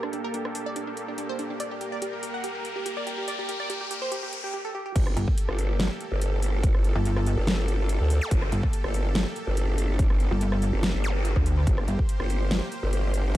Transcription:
0.00 4.50 A#3 medium
0.00 0.12 D4 medium
0.00 4.50 G4 medium
0.00 1.57 A4 medium
0.00 cross-stick soft
0.00 riser medium
0.13 0.22 D4 medium
0.13 closed hi-hat medium
0.24 0.32 A#4 loud
0.34 0.43 D4 medium
0.34 closed hi-hat medium
0.45 0.53 D4 medium
0.45 cross-stick soft
0.55 0.64 D4 medium
0.55 open hi-hat medium
0.66 0.74 D5 medium
0.76 0.85 D4 medium
0.76 closed hi-hat medium
0.87 0.95 D4 medium
0.97 closed hi-hat soft
1.08 1.16 D4 medium
1.18 1.27 D4 medium
1.18 closed hi-hat medium
1.29 1.37 C5 loud
1.39 1.48 D4 medium
1.39 closed hi-hat medium
1.50 1.58 D4 medium
1.60 4.51 A#4 medium
1.60 1.69 D5 medium
1.60 closed hi-hat medium
1.71 1.79 G4 medium
1.81 1.90 G4 medium
1.81 closed hi-hat medium
1.92 2.00 D5 loud
2.02 2.11 G4 medium
2.02 closed hi-hat medium
2.13 2.21 G4 medium
2.23 2.32 G4 medium
2.23 open hi-hat medium
2.34 2.42 F#5 medium
2.44 2.53 G4 medium
2.44 closed hi-hat medium
2.55 2.63 G4 medium
2.65 closed hi-hat medium
2.76 2.84 G4 medium
2.86 2.95 G4 medium
2.86 closed hi-hat medium
2.97 3.05 D5 medium
3.07 3.16 G4 medium
3.07 closed hi-hat medium
3.18 3.26 G4 medium
3.28 3.37 D5 loud
3.28 closed hi-hat medium
3.39 3.47 G4 medium
3.49 3.58 G4 medium
3.49 closed hi-hat medium
3.60 3.68 D5 loud
3.70 3.79 G4 medium
3.70 closed hi-hat medium
3.81 3.89 G4 medium
3.91 4.00 G4 medium
3.91 open hi-hat medium
4.02 4.10 C5 loud
4.12 4.21 G4 medium
4.12 closed hi-hat medium
4.23 4.31 G4 medium
4.33 closed hi-hat medium
4.44 4.52 G4 medium
4.54 4.63 G4 medium
4.65 4.73 A4 medium
4.75 4.84 G4 medium
4.86 4.94 G4 medium
4.95 5.15 G1 loud
4.95 13.37 A#3 medium
4.95 13.37 G4 medium
4.95 11.65 A4 medium
4.95 kick loud
4.95 closed hi-hat medium
4.95 crash loud
5.07 cross-stick medium
5.17 5.26 G1 loud
5.17 closed hi-hat medium
5.28 kick medium
5.38 closed hi-hat medium
5.49 5.89 G1 medium
5.49 cross-stick medium
5.59 open hi-hat medium
5.80 snare loud
5.80 closed hi-hat medium
6.00 closed hi-hat medium
6.12 6.94 G1 medium
6.21 closed hi-hat medium
6.42 open hi-hat medium
6.63 kick loud
6.63 closed hi-hat medium
6.75 cross-stick medium
6.84 closed hi-hat medium
6.96 7.36 G1 medium
7.05 closed hi-hat medium
7.16 cross-stick medium
7.26 open hi-hat medium
7.37 7.99 G1 loud
7.47 snare loud
7.47 closed hi-hat medium
7.68 closed hi-hat medium
7.89 closed hi-hat medium
8.00 8.20 D2 loud
8.10 open hi-hat medium
8.21 zap medium
8.31 8.51 G1 medium
8.31 kick loud
8.31 closed hi-hat medium
8.42 cross-stick medium
8.52 8.62 G1 loud
8.52 closed hi-hat medium
8.63 kick medium
8.73 closed hi-hat medium
8.84 9.24 G1 loud
8.84 cross-stick medium
8.94 open hi-hat medium
9.15 snare loud
9.15 closed hi-hat medium
9.36 closed hi-hat medium
9.47 10.29 G1 medium
9.57 closed hi-hat medium
9.78 open hi-hat medium
9.99 kick loud
9.99 closed hi-hat medium
10.10 cross-stick medium
10.20 closed hi-hat medium
10.31 10.71 G1 loud
10.41 closed hi-hat medium
10.52 cross-stick medium
10.62 open hi-hat medium
10.73 10.92 G1 loud
10.83 snare loud
10.83 closed hi-hat medium
10.94 11.34 G1 loud
11.04 closed hi-hat medium
11.04 zap medium
11.25 closed hi-hat medium
11.36 11.65 D2 loud
11.36 kick medium
11.46 open hi-hat medium
11.67 11.86 G1 medium
11.67 13.37 C5 medium
11.67 kick loud
11.67 closed hi-hat medium
11.78 cross-stick medium
11.88 11.97 G1 medium
11.88 closed hi-hat medium
11.99 kick medium
12.09 closed hi-hat medium
12.20 12.60 G1 loud
12.20 cross-stick medium
12.30 open hi-hat medium
12.51 snare loud
12.51 closed hi-hat medium
12.72 closed hi-hat medium
12.83 13.37 G1 loud
12.93 closed hi-hat medium
13.14 open hi-hat medium

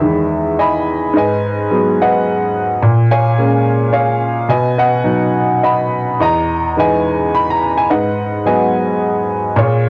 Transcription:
0.00 1.10 E2 medium
0.00 0.56 D#3 soft
0.00 0.56 E3 soft
0.00 0.56 G#3 soft
0.00 0.54 G#4 soft
0.00 0.54 B4 soft
0.00 0.61 E5 medium
0.59 1.11 D#5 medium
0.59 1.11 G#5 medium
0.59 1.17 B5 medium
1.13 2.78 G#2 medium
1.13 1.95 B4 medium
1.13 1.96 D#5 medium
1.18 2.03 G#5 medium
1.71 2.25 F#3 soft
1.71 2.25 G#3 soft
1.71 2.25 B3 soft
2.02 2.80 B4 medium
2.02 2.79 D#5 soft
2.02 2.52 F#5 medium
2.82 4.44 A#2 medium
3.11 3.89 C#5 medium
3.11 3.89 F5 medium
3.11 3.89 G#5 medium
3.38 3.91 G#3 soft
3.38 3.91 A#3 soft
3.38 3.91 C#4 soft
3.93 4.45 G#4 soft
3.93 4.44 C#5 soft
3.93 4.50 F5 medium
4.49 6.15 B2 medium
4.49 4.76 B4 medium
4.49 4.77 D#5 medium
4.49 4.77 G#5 medium
4.78 5.58 B4 medium
4.78 5.58 D#5 medium
4.78 5.62 F#5 medium
5.04 5.59 F#3 soft
5.04 5.59 B3 soft
5.04 5.59 D#4 soft
5.63 6.16 D#5 medium
5.63 6.16 F#5 medium
5.63 6.17 B5 medium
6.20 7.86 E2 medium
6.20 6.78 D#5 medium
6.20 6.80 A#5 medium
6.77 7.32 E3 soft
6.77 7.32 G#3 soft
6.77 7.32 D#4 soft
6.77 7.59 B4 medium
6.77 7.59 D#5 medium
6.77 7.37 G#5 medium
7.35 7.48 B5 medium
7.51 7.78 A#5 medium
7.78 7.90 G#5 medium
7.90 9.53 G#2 medium
7.90 8.46 B4 medium
7.90 8.46 D#5 medium
7.90 8.47 F#5 medium
8.46 8.99 F#3 soft
8.46 8.99 G#3 soft
8.46 9.00 B3 medium
8.46 9.26 B4 medium
8.46 9.26 D#5 soft
8.46 9.25 G#5 medium
9.56 9.89 A#2 medium
9.56 9.89 F4 medium
9.56 9.89 C#5 medium
9.61 9.89 G#4 medium

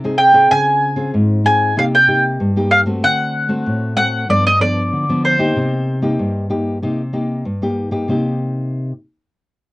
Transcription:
0.00 0.47 C3 medium
0.00 0.30 C4 medium
0.04 0.30 D#4 medium
0.04 0.31 G#4 medium
0.18 0.48 G5 medium
0.33 0.92 C4 medium
0.33 0.92 F4 medium
0.33 0.93 G#4 medium
0.51 1.11 C#3 medium
0.51 1.10 G#5 loud
0.96 1.39 C4 medium
0.96 1.39 F4 medium
0.96 1.40 G#4 medium
1.14 1.74 G#2 medium
1.44 1.72 C4 medium
1.44 1.72 F4 medium
1.44 1.72 G#4 medium
1.44 1.75 G#5 loud
1.77 2.37 C3 medium
1.77 1.96 A#3 medium
1.77 1.96 D#4 medium
1.77 1.96 G4 medium
1.77 1.84 F5 medium
1.95 2.23 G5 medium
2.07 2.50 A#3 medium
2.07 2.51 D#4 medium
2.07 2.51 G4 medium
2.40 3.00 G2 medium
2.56 2.83 A#3 medium
2.56 2.83 D#4 medium
2.56 2.83 G4 medium
2.71 2.80 F5 medium
2.86 3.45 A3 medium
2.86 3.45 C4 medium
2.86 3.45 F#4 medium
3.03 3.63 D3 medium
3.03 3.96 F#5 loud
3.49 3.92 A3 medium
3.49 3.93 C4 medium
3.49 3.93 F#4 medium
3.66 4.27 A2 medium
3.97 4.24 A3 medium
3.97 4.24 C4 medium
3.97 4.25 F#4 medium
3.97 4.27 F#5 loud
4.29 4.90 G2 medium
4.29 4.48 F3 medium
4.29 4.48 B3 medium
4.29 4.49 D4 medium
4.29 4.45 D5 medium
4.47 4.61 D#5 loud
4.60 5.03 F3 medium
4.60 5.03 B3 medium
4.60 5.04 D4 medium
4.60 5.24 D5 medium
4.93 5.53 D3 medium
5.09 5.36 F3 medium
5.09 5.36 B3 medium
5.09 5.36 D4 medium
5.25 7.42 C5 medium
5.38 5.98 A#3 medium
5.38 5.98 D#4 medium
5.38 5.98 G4 medium
5.56 6.16 C3 medium
6.02 6.45 A#3 medium
6.02 6.45 D#4 medium
6.02 6.46 G4 medium
6.19 6.79 G2 medium
6.50 6.77 A#3 medium
6.50 6.77 D#4 medium
6.50 6.77 G4 medium
6.82 7.43 C3 medium
6.82 7.01 A#3 medium
6.82 7.01 D#4 medium
6.82 7.02 G4 medium
7.13 7.43 A#3 medium
7.13 7.43 D#4 medium
7.13 7.44 G4 medium
7.45 8.06 G2 medium
7.62 7.88 A#3 medium
7.62 7.89 D#4 medium
7.62 7.89 G4 medium
7.91 8.08 A#3 medium
7.91 8.08 D#4 medium
7.91 8.09 G4 medium
8.08 8.91 C3 medium
8.08 8.91 A#3 medium
8.08 8.91 D#4 medium
8.08 8.91 G4 medium

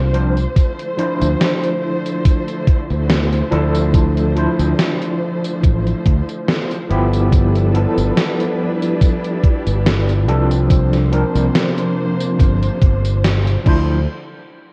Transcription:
0.00 0.45 C2 loud
0.00 0.53 C3 medium
0.00 0.53 A#3 medium
0.00 0.52 D4 medium
0.00 0.53 F4 medium
0.00 6.86 C5 medium
0.13 0.36 F3 medium
0.13 0.37 C4 medium
0.13 0.37 D4 medium
0.13 0.37 C5 medium
0.13 closed hi-hat medium
0.37 closed hi-hat soft
0.37 tambourine medium
0.56 6.86 D3 medium
0.56 13.62 F3 medium
0.56 6.86 A3 medium
0.56 6.86 E4 medium
0.56 kick loud
0.56 closed hi-hat medium
0.56 tambourine soft
0.79 closed hi-hat soft
0.79 tambourine soft
0.97 2.62 F3 medium
0.97 2.63 D4 medium
0.97 2.63 E4 medium
0.97 2.64 C5 medium
0.97 closed hi-hat medium
1.21 1.34 D2 loud
1.21 closed hi-hat soft
1.21 tambourine medium
1.41 snare loud
1.41 closed hi-hat medium
1.41 tambourine soft
1.64 closed hi-hat soft
1.64 tambourine soft
2.06 closed hi-hat soft
2.06 tambourine medium
2.25 kick loud
2.25 closed hi-hat medium
2.25 tambourine soft
2.48 closed hi-hat soft
2.48 tambourine soft
2.68 kick loud
2.68 closed hi-hat medium
2.91 3.41 D2 medium
2.91 closed hi-hat soft
2.91 tambourine medium
3.10 snare loud
3.10 closed hi-hat medium
3.10 tambourine soft
3.33 closed hi-hat soft
3.33 tambourine soft
3.51 4.47 D2 medium
3.51 4.31 F3 loud
3.51 4.32 D4 medium
3.51 4.32 E4 medium
3.51 4.32 A4 loud
3.51 closed hi-hat medium
3.75 closed hi-hat soft
3.75 tambourine medium
3.94 kick loud
3.94 closed hi-hat medium
3.94 tambourine soft
4.17 closed hi-hat soft
4.17 tambourine soft
4.35 6.00 F3 medium
4.35 6.01 D4 medium
4.35 6.01 E4 medium
4.35 6.02 C5 medium
4.35 closed hi-hat medium
4.59 4.72 D2 loud
4.59 closed hi-hat soft
4.59 tambourine medium
4.79 snare loud
4.79 closed hi-hat medium
4.79 tambourine soft
5.02 closed hi-hat soft
5.02 tambourine soft
5.44 closed hi-hat soft
5.44 tambourine medium
5.63 5.92 A1 medium
5.63 kick loud
5.63 closed hi-hat medium
5.63 tambourine soft
5.87 closed hi-hat soft
5.87 tambourine soft
6.06 6.20 D2 medium
6.06 kick loud
6.06 closed hi-hat medium
6.29 closed hi-hat soft
6.29 tambourine medium
6.48 snare loud
6.48 closed hi-hat medium
6.48 tambourine soft
6.71 closed hi-hat soft
6.71 tambourine soft
6.89 7.85 G1 medium
6.89 7.70 F3 medium
6.89 10.66 G3 medium
6.89 7.70 B3 medium
6.89 10.66 D4 medium
6.89 10.67 E4 medium
6.89 7.70 E4 medium
6.89 7.70 G4 loud
6.89 8.57 A4 medium
6.89 10.66 B4 loud
6.89 closed hi-hat medium
7.13 closed hi-hat soft
7.13 tambourine medium
7.32 kick loud
7.32 closed hi-hat medium
7.32 tambourine soft
7.55 closed hi-hat soft
7.55 tambourine soft
7.73 9.38 F3 medium
7.73 9.39 B3 medium
7.73 9.39 E4 medium
7.73 9.40 A4 medium
7.73 closed hi-hat medium
7.97 8.10 G1 loud
7.97 closed hi-hat soft
7.97 tambourine medium
8.17 snare loud
8.17 closed hi-hat medium
8.17 tambourine soft
8.40 closed hi-hat soft
8.40 tambourine soft
8.59 10.68 G4 medium
8.82 closed hi-hat soft
8.82 tambourine medium
9.01 kick loud
9.01 closed hi-hat medium
9.01 tambourine soft
9.24 closed hi-hat soft
9.24 tambourine soft
9.43 kick loud
9.43 closed hi-hat medium
9.67 10.28 G1 medium
9.67 closed hi-hat soft
9.67 tambourine medium
9.86 snare loud
9.86 closed hi-hat medium
9.86 tambourine soft
10.09 closed hi-hat soft
10.09 tambourine soft
10.28 11.23 C2 medium
10.28 11.08 F3 loud
10.28 11.08 C4 medium
10.28 11.08 D4 medium
10.28 11.08 A4 loud
10.28 closed hi-hat medium
10.51 closed hi-hat soft
10.51 tambourine medium
10.70 13.63 C3 medium
10.70 13.63 A#3 medium
10.70 13.63 D4 medium
10.70 13.63 C5 medium
10.70 kick loud
10.70 closed hi-hat medium
10.70 tambourine soft
10.93 snare soft
10.93 closed hi-hat soft
10.93 tambourine soft
11.11 12.76 F3 medium
11.11 12.77 C4 medium
11.11 12.77 D4 medium
11.11 12.78 A#4 medium
11.11 closed hi-hat medium
11.35 11.48 C2 loud
11.35 closed hi-hat soft
11.35 tambourine medium
11.55 snare loud
11.55 closed hi-hat medium
11.55 tambourine soft
11.78 closed hi-hat soft
11.78 tambourine soft
12.20 closed hi-hat soft
12.20 tambourine medium
12.39 12.68 G1 medium
12.39 kick loud
12.39 closed hi-hat loud
12.39 tambourine soft
12.62 closed hi-hat soft
12.62 tambourine soft
12.82 13.55 G1 medium
12.82 kick loud
12.82 closed hi-hat medium
13.05 closed hi-hat soft
13.05 tambourine medium
13.24 snare loud
13.24 closed hi-hat medium
13.24 tambourine soft
13.47 closed hi-hat soft
13.47 tambourine soft
13.64 14.05 D2 loud
13.64 14.05 D3 medium
13.64 13.97 F3 medium
13.64 14.05 F3 medium
13.64 14.05 A3 medium
13.64 13.98 D4 medium
13.64 14.05 E4 medium
13.64 13.98 E4 medium
13.64 14.05 C5 medium
13.64 kick loud
13.64 crash medium
13.68 13.99 C5 medium

